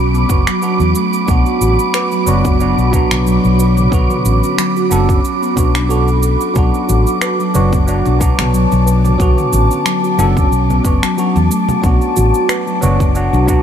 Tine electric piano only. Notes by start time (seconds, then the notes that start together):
0.28 F#3 B3 D4 F#4
0.61 F#3 B3 D4 F#4
1.27 F#3 B3 D4
1.31 F#4
2.26 F#3 B3 D4 F#4
2.60 F#3 B3 D4 F#4
2.91 F#3 B3 D4 F#4
3.90 D3 F#3 B3 F#4
4.90 F#3 B3 D4 A4
5.56 F#3 B3 D4 F#4
5.89 F#3 B3 D4 F#4
6.54 F#3 B3 D4
6.58 F#4
7.54 F#3 B3 D4 F#4
7.87 F#3 B3 D4 F#4
8.19 F#3 B3 D4 F#4
9.18 D3 F#3 B3 F#4
10.18 F#3 B3 D4 A4
10.84 F#3 B3 D4 F#4
11.17 F#3 B3 D4 F#4
11.82 F#3 B3 D4
11.86 F#4
12.81 F#3 B3 D4 F#4
13.15 F#3 B3 D4 F#4
13.46 F#3 B3 D4 F#4